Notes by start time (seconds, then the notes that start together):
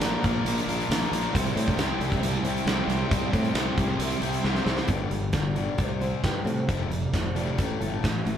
Already playing: A#2 F3 A#3
0.00 A#1 A#2 F3 A#3, snare, closed hi-hat
0.04 A#3 D4 F4 A#4
0.24 A#1 A#3 D4 F4 A#4, kick, closed hi-hat
0.44 A#1 A#2 F3 A#3 D4 F4 A#4, closed hi-hat
0.58 closed hi-hat
0.67 A#1 A#3 D4 F4 A#4, closed hi-hat
0.80 closed hi-hat
0.90 A#1 A#3 D4 F4 A#4, snare, closed hi-hat
1.02 closed hi-hat
1.12 A#1 A#3 D4 F4 A#4, snare, closed hi-hat
1.33 C2 C3 G3 C4 E4 G4 C5, kick, closed hi-hat
1.47 closed hi-hat
1.56 A2 C4 E4 G4 C5, closed hi-hat
1.68 kick, closed hi-hat
1.78 C2 C3 G3 C4 E4 G4 C5, snare, closed hi-hat
2.00 C2 C4 E4 G4 C5, closed hi-hat
2.12 kick, closed hi-hat
2.21 C2 C3 G3 C4 E4 G4 C5, closed hi-hat
2.43 C2 C4 E4 G4 C5, closed hi-hat
2.57 closed hi-hat
2.66 C2 C4 E4 G4 C5, snare, closed hi-hat
2.87 C2 C4 E4 G4 C5, snare, closed hi-hat
3.10 C2 C3 G3 C4 E4 G4 C5, kick, closed hi-hat
3.33 A2 C4 E4 G4 C5, kick, closed hi-hat
3.44 closed hi-hat
3.54 C2 C3 G3 C4 E4 G4 C5, snare, closed hi-hat
3.78 C2 C4 E4 G4 C5, kick, closed hi-hat
3.98 C2 C3 G3 C4 E4 G4 C5, closed hi-hat
4.10 closed hi-hat
4.21 C2 C4 E4 G4 C5, closed hi-hat
4.33 closed hi-hat
4.44 C2 C4 E4 G4 C5, snare
4.55 snare
4.65 C2 C4 E4 G4 C5, snare
4.77 snare
4.88 G1 G2 D3 G3, kick, closed hi-hat
5.11 G1 G2 D3 G3, closed hi-hat
5.33 G1 G2 D3, kick, snare, closed hi-hat
5.56 G2 D3 G3, closed hi-hat
5.78 C2 C3 G3 C4, kick, closed hi-hat
6.01 C3 G3 C4 C5, closed hi-hat
6.23 G2 C3 G3 G4, kick, snare, closed hi-hat
6.45 A2 C3 G3 C4, closed hi-hat
6.68 F1 F2 C3 F3, kick, closed hi-hat
6.90 F1 F2 C3 G3, closed hi-hat
7.13 F1 F2 C3 F3, kick, snare, closed hi-hat
7.35 F1 F2 C3 F3 G3, closed hi-hat
7.58 A1 A2 E3 A3, kick, closed hi-hat
7.80 G1 A2 E3 A3 A4, closed hi-hat
8.03 A1 A2 E3 E4, kick, snare, closed hi-hat
8.25 A1 A2 E3 A3, closed hi-hat